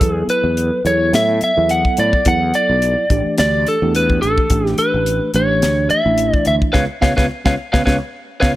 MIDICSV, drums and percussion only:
0, 0, Header, 1, 2, 480
1, 0, Start_track
1, 0, Tempo, 560748
1, 12, Time_signature, 4, 2, 24, 8
1, 7329, End_track
2, 0, Start_track
2, 0, Title_t, "Drums"
2, 7, Note_on_c, 9, 36, 105
2, 8, Note_on_c, 9, 42, 87
2, 93, Note_off_c, 9, 36, 0
2, 94, Note_off_c, 9, 42, 0
2, 247, Note_on_c, 9, 42, 58
2, 332, Note_off_c, 9, 42, 0
2, 489, Note_on_c, 9, 42, 79
2, 575, Note_off_c, 9, 42, 0
2, 732, Note_on_c, 9, 42, 64
2, 818, Note_off_c, 9, 42, 0
2, 972, Note_on_c, 9, 42, 83
2, 977, Note_on_c, 9, 38, 108
2, 1057, Note_off_c, 9, 42, 0
2, 1062, Note_off_c, 9, 38, 0
2, 1206, Note_on_c, 9, 42, 60
2, 1292, Note_off_c, 9, 42, 0
2, 1449, Note_on_c, 9, 42, 79
2, 1534, Note_off_c, 9, 42, 0
2, 1583, Note_on_c, 9, 36, 79
2, 1668, Note_off_c, 9, 36, 0
2, 1686, Note_on_c, 9, 42, 62
2, 1772, Note_off_c, 9, 42, 0
2, 1823, Note_on_c, 9, 36, 76
2, 1909, Note_off_c, 9, 36, 0
2, 1927, Note_on_c, 9, 42, 76
2, 1933, Note_on_c, 9, 36, 100
2, 2013, Note_off_c, 9, 42, 0
2, 2019, Note_off_c, 9, 36, 0
2, 2172, Note_on_c, 9, 42, 55
2, 2257, Note_off_c, 9, 42, 0
2, 2414, Note_on_c, 9, 42, 65
2, 2499, Note_off_c, 9, 42, 0
2, 2655, Note_on_c, 9, 36, 92
2, 2655, Note_on_c, 9, 42, 53
2, 2740, Note_off_c, 9, 36, 0
2, 2741, Note_off_c, 9, 42, 0
2, 2890, Note_on_c, 9, 42, 78
2, 2895, Note_on_c, 9, 38, 109
2, 2976, Note_off_c, 9, 42, 0
2, 2981, Note_off_c, 9, 38, 0
2, 3138, Note_on_c, 9, 42, 57
2, 3223, Note_off_c, 9, 42, 0
2, 3378, Note_on_c, 9, 42, 80
2, 3464, Note_off_c, 9, 42, 0
2, 3506, Note_on_c, 9, 36, 75
2, 3592, Note_off_c, 9, 36, 0
2, 3617, Note_on_c, 9, 42, 55
2, 3703, Note_off_c, 9, 42, 0
2, 3746, Note_on_c, 9, 36, 84
2, 3832, Note_off_c, 9, 36, 0
2, 3850, Note_on_c, 9, 42, 80
2, 3854, Note_on_c, 9, 36, 100
2, 3935, Note_off_c, 9, 42, 0
2, 3940, Note_off_c, 9, 36, 0
2, 3992, Note_on_c, 9, 38, 29
2, 4077, Note_off_c, 9, 38, 0
2, 4090, Note_on_c, 9, 42, 65
2, 4175, Note_off_c, 9, 42, 0
2, 4334, Note_on_c, 9, 42, 77
2, 4419, Note_off_c, 9, 42, 0
2, 4568, Note_on_c, 9, 42, 67
2, 4653, Note_off_c, 9, 42, 0
2, 4813, Note_on_c, 9, 42, 81
2, 4818, Note_on_c, 9, 38, 107
2, 4898, Note_off_c, 9, 42, 0
2, 4903, Note_off_c, 9, 38, 0
2, 5049, Note_on_c, 9, 42, 60
2, 5135, Note_off_c, 9, 42, 0
2, 5286, Note_on_c, 9, 42, 87
2, 5372, Note_off_c, 9, 42, 0
2, 5423, Note_on_c, 9, 36, 82
2, 5509, Note_off_c, 9, 36, 0
2, 5521, Note_on_c, 9, 42, 56
2, 5606, Note_off_c, 9, 42, 0
2, 5664, Note_on_c, 9, 36, 73
2, 5750, Note_off_c, 9, 36, 0
2, 5770, Note_on_c, 9, 38, 84
2, 5773, Note_on_c, 9, 36, 84
2, 5855, Note_off_c, 9, 38, 0
2, 5859, Note_off_c, 9, 36, 0
2, 6012, Note_on_c, 9, 36, 82
2, 6013, Note_on_c, 9, 38, 92
2, 6097, Note_off_c, 9, 36, 0
2, 6099, Note_off_c, 9, 38, 0
2, 6144, Note_on_c, 9, 36, 88
2, 6144, Note_on_c, 9, 38, 87
2, 6229, Note_off_c, 9, 36, 0
2, 6230, Note_off_c, 9, 38, 0
2, 6382, Note_on_c, 9, 38, 93
2, 6383, Note_on_c, 9, 36, 87
2, 6468, Note_off_c, 9, 36, 0
2, 6468, Note_off_c, 9, 38, 0
2, 6623, Note_on_c, 9, 38, 84
2, 6624, Note_on_c, 9, 36, 93
2, 6709, Note_off_c, 9, 38, 0
2, 6710, Note_off_c, 9, 36, 0
2, 6735, Note_on_c, 9, 36, 88
2, 6738, Note_on_c, 9, 38, 94
2, 6821, Note_off_c, 9, 36, 0
2, 6824, Note_off_c, 9, 38, 0
2, 7212, Note_on_c, 9, 36, 90
2, 7213, Note_on_c, 9, 38, 86
2, 7298, Note_off_c, 9, 36, 0
2, 7299, Note_off_c, 9, 38, 0
2, 7329, End_track
0, 0, End_of_file